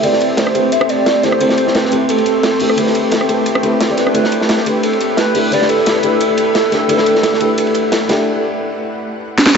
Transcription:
<<
  \new Staff \with { instrumentName = "Soft synth lead" } { \time 4/4 \key g \major \tempo 4 = 175 d''4 c''4 e''8 d''4 c''8~ | c''4 b'4 a'2~ | a'2 r4. b'8~ | b'4. r8 a'4 b'4 |
d''8 a'2.~ a'8~ | a'1~ | a'2. r4 | }
  \new Staff \with { instrumentName = "Ambient pad" } { \time 4/4 \key g \major << { g'1~ | g'1~ | g'1~ | g'1~ |
g'1 | fis''1 | r1 | } \\ { <a c'>1~ | <a c'>1~ | <a c'>1 | <e' b'>1~ |
<e' b'>1~ | <e' b'>1 | r1 | } >> }
  \new Staff \with { instrumentName = "Grand piano" } { \time 4/4 \key g \major <a c' e' g' b'>4. <a c' e' g' b'>8 r4. <a c' e' g' a'>8 | <a c' e' g' c''>4. <a c' e' g' b'>8 r4. <a c' e' g' a'>8 | <a c' e' g' b'>4. <a c' e' g' b'>8 r8 <a c' e' g' b'>8. <a c' e' g' d''>8. | <a d' e' g' b'>4. <a d' e' g' b'>8 r4. <a d' e' g' a'>8 |
<a d' e' g' b'>4. <a d' e' g' b'>8 r4. <a d' e' g' a'>8 | <a d' e' g' b'>4. <a d' e' g' b'>8 r4. <a d' e' g' a'>8 | r1 | }
  \new DrumStaff \with { instrumentName = "Drums" } \drummode { \time 4/4 <hh cymr>16 sn16 <hh cymr>8 <hh cymr sn>16 ss16 <hh cymr>8 <hh cymr>16 ss16 <hh cymr>8 <hh cymr sn>8 <hh cymr sn>16 ss16 | <hh cymr>16 sn16 <hh cymr>16 sn16 <hh cymr sn>16 sn16 <hh cymr>8 <hh cymr>16 cymr16 <hh cymr>8 <hh cymr sn>8 <hh hho>16 ss16 | <hh cymr>16 sn16 <hh cymr>8 <hh cymr sn>16 ss16 <hh cymr>8 <hh cymr>16 ss16 <hh cymr>8 <hh cymr sn>8 <hh cymr sn>16 ss16 | <hh cymr>16 sn16 <hh cymr>16 sn16 <hh cymr sn>16 sn16 <hh cymr>8 <hh cymr>16 cymr16 <hh cymr>8 <hh cymr sn>8 <hh hho>8 |
<hh cymr>16 sn16 <hh cymr>8 <hh cymr sn>8 <hh cymr>8 <hh cymr>8 <hh cymr>8 <hh cymr sn>8 <hh cymr sn>8 | <hh cymr>16 sn16 <hh cymr>16 sn16 <hh cymr sn>16 sn16 <hh cymr>8 <hh cymr>16 cymr16 <hh cymr>8 <hh cymr sn>8 <hh cymr sn>8 | r4 r4 r4 r16 sn16 sn8 | }
>>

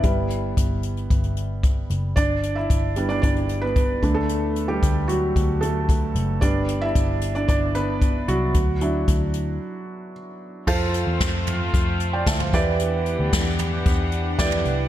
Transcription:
<<
  \new Staff \with { instrumentName = "Felt piano" } { \time 4/4 \key g \major \tempo 4 = 113 << { e''2.~ e''8 r8 | <d' d''>8. <e' e''>4 <d' d''>16 <d' d''>8. <b b'>4 <a a'>16~ | <a a'>8. <g g'>8. <fis fis'>4 <a a'>4 r8 | d''8. <e' e''>4 <d' d''>16 <d' d''>8 <b b'>4 <fis fis'>8~ |
<fis fis'>2. r4 | r2 r8. <d'' g''>16 <e'' a''>16 <c'' f''>8 r16 | r1 | } \\ { r1 | r1 | r1 | r1 |
r1 | <f' a' c'' f''>2 r4. <e' g' b' d''>8~ | <e' g' b' d''>4. r4. <e' g' b' d''>4 | } >> }
  \new Staff \with { instrumentName = "Felt piano" } { \time 4/4 \key g \major <g b e'>1 | r4. <g b d'>4. r8 <d a d'>8~ | <d a d'>2.~ <d a d'>8 r8 | <g b d'>1 |
r8 <fis d' e'>2.~ <fis d' e'>8 | r2. r8 e8~ | e4 r2. | }
  \new Staff \with { instrumentName = "String section" } { \time 4/4 \key g \major r1 | r1 | r1 | r1 |
r1 | <a c' f'>2.~ <a c' f'>8 <e b d' g' fis''>8~ | <e b d' g' fis''>1 | }
  \new Staff \with { instrumentName = "Picked electric bass" } { \clef bass \time 4/4 \key g \major g,,4 g,,4 g,,4. fis,,8 | g,,4 g,,4 g,,4. d,8~ | d,4 d,4 d,4. fis,,8 | g,,4 g,,4 g,,4. c,8 |
d,4 d,4 r2 | f,8. e,16 f,4 f,4 d,8 e,8~ | e,8. d,16 r4 e,4 e,8 c,8 | }
  \new DrumStaff \with { instrumentName = "Drums" } \drummode { \time 4/4 <hh bd>8 hh8 <hh bd>8 hh16 hh16 <hh bd>16 hh16 hh8 <hh bd>8 hh8 | <hh bd>8 hh8 <hh bd>8 hh16 hh16 <hh bd>16 hh16 hh8 <hh bd>8 <hh bd>8 | hh8 hh8 <hh bd>8 hh8 <hh bd>8 hh8 <hh bd>8 hh8 | <hh bd>8 hh8 <hh bd>8 hh16 hh16 <hh bd>8 hh8 <hh bd>8 hh8 |
<hh bd>8 hh8 <hh bd>8 hh8 r4 r4 | <cymc bd>8 hh8 <hh bd sn>8 <hh tomfh>8 <hh bd>8 hh8 <hh bd sn>16 tomfh16 <hh bd sn>8 | hh8 hh8 <hh bd sn>8 <hh tomfh>8 <hh bd>8 hh8 <hh bd sn>16 tomfh16 hh8 | }
>>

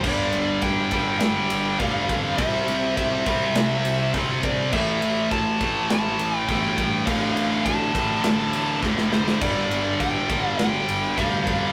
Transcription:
<<
  \new Staff \with { instrumentName = "Lead electric guitar" } { \time 4/4 \key g \dorian \tempo 4 = 102 d''4 g''4 g''4 f''4 | e''4 e''2 r8 d''8 | e''4 a''4 a''4 g''4 | f''4 a''2 r8 c''8 |
d''4 g''4 g''4 f''4 | }
  \new Staff \with { instrumentName = "Distorted electric guitar" } { \clef bass \time 4/4 \key g \dorian <g, d g>4. <g, d g>4. <g, d g>4 | <c g c'>4. <c g c'>4. <c g c'>4 | <a, e a>4. <a, e a>4. <a, e a>4 | <d, a, d>4. <d, a, d>4. <d, a, d>4 |
<g, d g>4. <g, d g>4. <g, d g>4 | }
  \new Staff \with { instrumentName = "Picked electric bass" } { \clef bass \time 4/4 \key g \dorian g,,8 g,,8 g,,8 g,,8 g,,8 g,,8 f,,8 f,8 | c,8 c,8 c,8 c,8 c,8 c,8 g,,4 | a,,8 a,,8 a,,8 a,,8 a,,8 a,,8 g,,8 g,8 | a,,8 a,,8 a,,8 a,,8 a,,8 a,,8 f,,4 |
g,,8 g,,8 g,,8 g,,8 g,,8 g,,8 f,,8 f,8 | }
  \new DrumStaff \with { instrumentName = "Drums" } \drummode { \time 4/4 <cymc bd>8 cymr8 <bd cymr>8 <bd cymr>8 <cymr sn>8 cymr8 <bd cymr>8 <bd cymr>8 | <bd cymr>8 cymr8 <bd cymr>8 <bd cymr>8 <cymr sn>8 cymr8 <bd cymr>8 <bd cymr>8 | <cymc bd>8 cymr8 <bd cymr>8 <bd cymr>8 <cymr sn>8 cymr8 <bd cymr>8 <bd cymr>8 | <bd cymr>8 cymr8 <bd cymr>8 <bd cymr>8 <cymr sn>8 cymr8 <bd sn>16 sn16 sn16 sn16 |
<cymc bd cymr>8 cymr8 <bd cymr>8 <bd cymr>8 <cymr sn>8 cymr8 <bd cymr>8 <bd cymr>8 | }
>>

